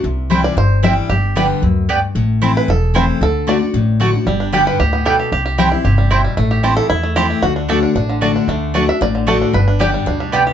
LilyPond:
<<
  \new Staff \with { instrumentName = "Mandolin" } { \time 4/4 \key g \major \tempo 4 = 228 r4 <c' e' c'' g''>8 r4. <c' e' c'' g''>8 r8 | r4 <b g' d'' g''>8 r4. <b g' d'' g''>8 r8 | r4 <c' e' c'' a''>8 r4. <c' e' c'' a''>8 r8 | r4 <a fis' d'' a''>8 r4. <a fis' d'' a''>8 r8 |
r4 <b g' d'' g''>8 r4. <b g' d'' g''>8 r8 | r4 <c' e' c'' g''>8 r4. <c' e' c'' g''>8 r8 | r4 <c' e' c'' a''>8 r4. <c' e' c'' a''>8 r8 | r4 <a fis' d'' a''>8 r4. <a fis' d'' a''>8 r8 |
r4 <a fis' d'' a''>8 r4. <a fis' d'' a''>8 r8 | r4 <b g' d'' g''>8 r4. <b g' d'' g''>8 r8 | }
  \new Staff \with { instrumentName = "Five-string banjo" } { \time 4/4 \key g \major << { r4. d''8 c''4 e''4 | g'4 b'2~ b'8 r8 | r4. b'8 a'4 c''4 | a'4 d''2~ d''8 r8 |
r4. b'8 g'4 a'4 | g'4 g'2~ g'8 r8 | r4. a'8 e'4 g'4 | fis'4 a'2~ a'8 r8 |
r4. e''8 d''4 a'4 | b'4 d''2~ d''8 r8 | } \\ { r1 | r1 | r1 | r1 |
g8 d'8 g4. b4 g'8 | r8 g'4 e'8 g'8 g8 e'8 g8 | a8 g'8 a4. a4 a8 | r8 d'4 d'8 d'8 d8 d'8 d'8 |
a4 d'4. d4 d'8 | r8 d'4 g8 d'8 g8 b8 g'8 | } >> }
  \new Staff \with { instrumentName = "Steel-string acoustic guitar" } { \time 4/4 \key g \major << { r4 <e g c' e'>4 r4 <e g c' e'>4 | r4 <d g b g'>4 r2 | r4 <e a c' e'>4 r4 <e a c' e'>4 | r4 <d a d' fis'>8 <d' fis'>8 r4 <d a d' fis'>8 <d' fis'>8 |
r4 <d g b g'>4 r2 | r4 <e g c' e'>8 <c' e'>8 r2 | r4 <e a c' e'>4 r4 <e a c' e'>4 | r4 <d a d' fis'>4 r4 <d a d' fis'>4 |
r4 <d a d' fis'>8 <d' fis'>8 r4 <d a d' fis'>4 | r4 <d g b g'>4 r2 | } \\ { c2 g,2 | g,2 fis,4 g,4 | a,2 e,2 | d2 a,2 |
g,2 a,4 b,4 | c2 c4 b,4 | a,2 e,2 | d2 a,2 |
d2 a,2 | g,2 b,4 c4 | } >> }
  \new Staff \with { instrumentName = "Upright bass" } { \clef bass \time 4/4 \key g \major c,2 g,,2 | g,,2 d,2 | a,,2 e,,2 | d,2 a,,2 |
g,,2 d,2 | c,2 g,,2 | a,,2 e,2 | d,2 a,,2 |
d,2 a,,2 | g,,2 d,2 | }
>>